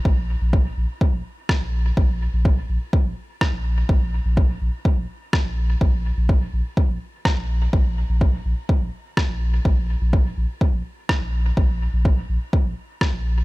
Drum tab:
SD |------r-|------r-|------r-|------r-|
BD |o-o-o-o-|o-o-o-o-|o-o-o-o-|o-o-o-o-|

SD |------r-|------r-|------r-|
BD |o-o-o-o-|o-o-o-o-|o-o-o-o-|